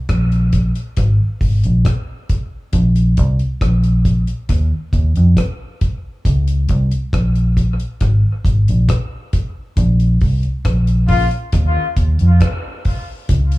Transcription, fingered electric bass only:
0.09 A#1
0.98 G#1
1.42 G#1
1.65 A#1
2.74 A#1
3.19 C2
3.62 A#1
4.50 D#2
4.94 D#2
5.17 F2
6.26 C#2
6.70 C2
7.14 A#1
8.02 G#1
8.45 G#1
8.69 A#1
9.77 A#1
10.22 C2
10.65 A#1
11.54 D#2
11.97 D#2
12.21 F2
13.30 C#2

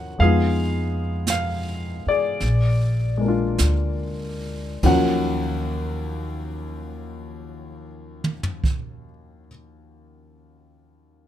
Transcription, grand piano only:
Already playing: F3 F#3 A#3 C#4 C#5 F#5 G#5
0.19 G#3 B3 D#4 G#4 F5
0.23 F4
1.30 F5
2.08 G#4 D5
3.17 G#3 A#3
3.25 D4 F4
4.83 D#2 D#3 F3 F#3 C#4 F#5

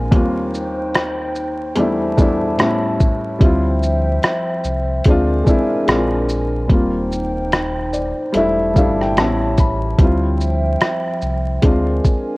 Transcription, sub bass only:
Already playing: A#1
3.41 D2
4.64 C2
5.06 D2
5.88 A#1
6.70 D#1
8.34 E1
8.76 G1
9.16 A1
9.99 D2
11.22 C2
11.64 D2

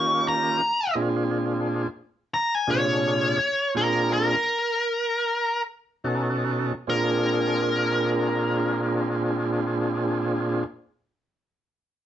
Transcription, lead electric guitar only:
Already playing: C#6
0.28 A#5
2.34 A#5
2.55 G#5
2.71 C#5
3.77 A#4
4.13 A#4
6.90 A#4

